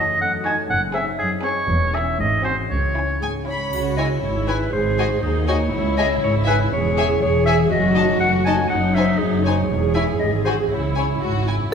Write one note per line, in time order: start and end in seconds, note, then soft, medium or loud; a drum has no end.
0.00 0.11 F#1 medium
0.00 0.10 F#2 medium
0.00 0.69 F#2 soft
0.00 0.72 A3 soft
0.00 0.15 D#4 medium
0.00 0.14 F#4 soft
0.00 0.19 D#5 medium
0.00 0.15 A5 soft
0.04 0.36 D#4 soft
0.21 0.60 F#2 medium
0.21 0.72 A4 soft
0.21 0.32 F#5 medium
0.37 1.03 D#4 soft
0.45 0.64 D#4 medium
0.45 0.63 F#4 medium
0.45 0.56 G#5 medium
0.45 0.64 A5 medium
0.54 1.52 F#3 soft
0.70 1.09 F#1 medium
0.70 1.71 F#2 soft
0.70 1.10 F#2 medium
0.70 0.81 F#5 medium
0.87 1.72 C4 soft
0.93 1.13 C4 medium
0.93 1.12 G#4 medium
0.93 1.06 E5 medium
0.93 1.14 G#5 medium
1.04 1.35 D#4 soft
1.19 1.59 F#2 medium
1.19 1.30 G#4 medium
1.19 2.02 G#4 soft
1.36 1.71 D#4 soft
1.44 1.63 C4 medium
1.44 1.63 G#4 soft
1.44 1.96 C#5 medium
1.44 1.63 G#5 soft
1.53 1.71 F#3 soft
1.69 2.09 E1 medium
1.69 2.22 E2 soft
1.69 2.09 E2 medium
1.86 2.22 C#4 soft
1.94 2.14 C#4 soft
1.94 2.14 G#4 soft
1.94 2.19 E5 medium
1.94 2.13 G#5 soft
2.02 2.22 E4 soft
2.02 2.53 G#4 soft
2.19 2.60 G#1 medium
2.19 2.73 G#2 soft
2.19 2.60 G#2 medium
2.19 2.44 D#5 medium
2.36 2.73 C4 soft
2.44 2.64 C4 soft
2.44 2.64 F#4 soft
2.44 2.56 C5 medium
2.44 2.64 G#5 soft
2.53 2.73 F#4 soft
2.53 3.21 G#4 soft
2.70 3.11 C#2 medium
2.70 3.11 C#3 soft
2.70 3.72 C#3 soft
2.70 3.21 C#5 medium
2.88 3.89 C#4 soft
2.96 3.16 C#4 soft
2.96 3.15 E4 soft
2.96 3.16 G#5 soft
3.05 3.38 E4 soft
3.21 3.62 G#2 soft
3.21 3.33 G#4 soft
3.21 4.23 G#4 soft
3.21 3.31 G#5 soft
3.39 4.06 E4 soft
3.46 3.67 C#4 soft
3.46 3.66 E4 soft
3.46 3.96 C#5 soft
3.46 3.73 B5 soft
3.56 4.55 G#3 soft
3.73 4.15 C#2 medium
3.73 4.15 C#3 medium
3.73 4.76 C#3 soft
3.73 4.20 F#4 soft
3.73 triangle soft
3.91 4.76 C#4 soft
3.97 4.05 E4 soft
3.97 4.05 C#5 soft
3.97 4.08 D#5 medium
3.97 4.06 G#5 soft
4.07 4.39 E4 soft
4.22 4.65 G#1 medium
4.22 4.65 G#2 soft
4.22 4.74 E4 soft
4.22 5.23 G#4 soft
4.22 4.49 C#5 medium
4.40 4.76 E4 soft
4.48 4.56 E4 soft
4.48 4.72 B4 medium
4.48 4.56 C#5 soft
4.48 4.56 G#5 soft
4.56 6.55 G#3 soft
4.73 5.15 G#1 medium
4.73 5.15 G#2 medium
4.73 5.76 G#2 soft
4.73 5.23 G#4 medium
4.73 5.22 C5 medium
4.91 5.76 D#4 soft
4.99 5.07 F#4 soft
4.99 5.07 D#5 soft
4.99 5.07 G#5 soft
5.07 5.40 F#4 soft
5.22 5.65 D#2 medium
5.22 5.73 D#4 soft
5.22 5.47 G#4 medium
5.22 6.22 G#4 soft
5.41 5.76 F#4 soft
5.47 5.56 F#4 soft
5.47 5.97 C#5 medium
5.47 5.56 D#5 soft
5.47 5.56 G#5 soft
5.57 5.76 D#3 soft
5.73 6.15 C#2 medium
5.73 6.75 C#3 soft
5.73 6.70 E4 medium
5.90 6.88 C#4 soft
5.97 6.07 G#4 soft
5.97 6.09 D#5 medium
5.97 6.07 E5 soft
5.97 6.06 G#5 soft
6.06 6.38 E4 soft
6.23 6.65 G#1 medium
6.23 6.64 G#2 medium
6.23 7.21 G#4 soft
6.23 6.34 C#5 medium
6.39 7.05 E4 soft
6.46 6.55 G#4 soft
6.46 6.59 B4 medium
6.46 6.54 E5 soft
6.46 6.56 G#5 soft
6.57 7.74 G#3 soft
6.73 7.15 E1 medium
6.73 7.74 E2 soft
6.73 7.14 E2 medium
6.73 7.21 G#4 medium
6.73 7.21 C#5 medium
6.90 7.74 C#4 soft
6.97 7.06 G#4 soft
6.97 7.05 E5 soft
6.97 7.06 G#5 soft
7.06 7.38 E4 soft
7.22 7.64 E1 medium
7.22 7.64 E2 medium
7.22 7.71 G#4 medium
7.22 7.74 G#4 soft
7.22 7.45 C#5 medium
7.39 7.74 E4 soft
7.46 7.55 G#4 soft
7.46 7.57 E5 medium
7.46 7.55 E5 soft
7.46 7.55 G#5 soft
7.56 7.74 E3 soft
7.71 8.14 F#1 medium
7.71 8.69 F#2 medium
7.71 8.14 F#2 medium
7.71 8.71 F#4 medium
7.71 8.20 D#5 medium
7.89 8.73 A3 soft
7.95 8.03 D#4 soft
7.95 8.03 D#5 soft
7.95 8.05 A5 soft
8.05 8.37 D#4 soft
8.20 8.63 F#1 medium
8.20 8.63 F#2 medium
8.20 8.73 A4 soft
8.20 8.32 F#5 medium
8.38 9.03 D#4 soft
8.45 8.54 D#4 soft
8.45 8.54 D#5 soft
8.45 8.69 G#5 medium
8.45 8.54 A5 soft
8.55 9.53 F#3 soft
8.70 9.12 F#1 medium
8.70 9.72 F#2 soft
8.70 9.12 F#2 medium
8.70 9.70 D#4 medium
8.70 8.96 F#5 medium
8.88 9.72 C4 soft
8.94 9.04 D#4 soft
8.94 9.04 C5 soft
8.94 9.20 E5 medium
8.94 9.05 G#5 soft
9.04 9.36 D#4 soft
9.18 9.62 F#1 medium
9.18 9.62 F#2 medium
9.18 9.45 G#4 medium
9.18 10.02 G#4 soft
9.37 9.72 D#4 soft
9.44 9.54 D#4 soft
9.44 9.54 C5 soft
9.44 9.94 C#5 medium
9.44 9.54 G#5 soft
9.54 9.72 F#3 soft
9.69 10.12 E1 medium
9.69 10.12 E2 medium
9.69 10.22 E2 soft
9.69 10.69 G#4 medium
9.87 10.22 C#4 soft
9.94 10.03 E4 soft
9.94 10.03 C#5 soft
9.94 10.06 E5 medium
9.94 10.03 G#5 soft
10.03 10.22 E4 soft
10.03 10.53 G#4 soft
10.19 10.62 G#1 medium
10.19 10.73 G#2 soft
10.19 10.63 G#2 soft
10.19 10.31 D#5 medium
10.37 10.73 C4 soft
10.45 10.54 F#4 soft
10.45 10.56 C5 medium
10.45 10.54 C5 soft
10.45 10.53 G#5 soft
10.54 10.73 F#4 soft
10.54 11.21 G#4 soft
10.71 11.13 C#2 soft
10.71 11.14 C#3 soft
10.71 11.74 C#3 soft
10.71 11.48 E4 soft
10.71 11.21 C#5 soft
10.88 11.59 C#4 soft
10.96 11.05 E4 soft
10.96 11.04 C#5 soft
10.96 11.04 G#5 soft
11.05 11.38 E4 soft
11.22 11.64 G#1 soft
11.22 11.65 G#2 soft
11.22 11.46 F#4 soft
11.22 11.74 G#4 soft
11.39 11.74 E4 soft
11.47 11.73 E4 soft
11.47 11.55 G#5 soft
11.55 11.74 F#2 soft
11.55 11.74 G#3 soft
11.60 11.74 C#4 soft
11.64 11.74 F#4 soft
11.69 11.74 A4 soft